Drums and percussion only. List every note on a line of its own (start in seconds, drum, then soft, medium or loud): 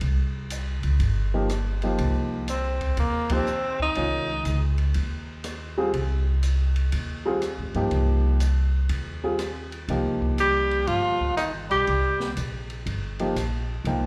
0.01 ride soft
0.50 hi-hat pedal medium
0.50 ride medium
0.83 ride soft
1.00 ride medium
1.49 cross-stick medium
1.49 hi-hat pedal soft
1.49 ride medium
1.82 ride soft
1.98 ride soft
2.48 hi-hat pedal medium
2.48 ride medium
2.81 kick soft
2.81 ride soft
2.97 ride medium
3.29 kick medium
3.29 ride medium
3.46 hi-hat pedal soft
3.80 kick soft
3.95 ride soft
4.45 hi-hat pedal soft
4.45 ride medium
4.78 ride soft
4.94 ride medium
5.44 cross-stick medium
5.44 hi-hat pedal soft
5.44 ride medium
5.93 ride medium
6.43 hi-hat pedal soft
6.43 ride medium
6.76 ride soft
6.92 ride medium
7.42 cross-stick soft
7.42 hi-hat pedal soft
7.42 ride soft
7.74 ride soft
7.91 ride soft
8.40 hi-hat pedal medium
8.40 ride medium
8.89 ride medium
9.39 cross-stick medium
9.39 hi-hat pedal soft
9.39 ride medium
9.72 ride soft
9.88 ride soft
10.22 kick soft
10.38 hi-hat pedal soft
10.38 ride medium
10.71 ride soft
10.87 ride medium
11.21 kick soft
11.37 cross-stick medium
11.37 hi-hat pedal medium
11.37 ride medium
11.71 ride soft
11.87 ride soft
12.20 snare soft
12.37 hi-hat pedal soft
12.37 ride medium
12.70 ride soft
12.86 ride medium
13.19 ride soft
13.36 cross-stick soft
13.36 hi-hat pedal soft
13.36 ride medium
13.85 ride soft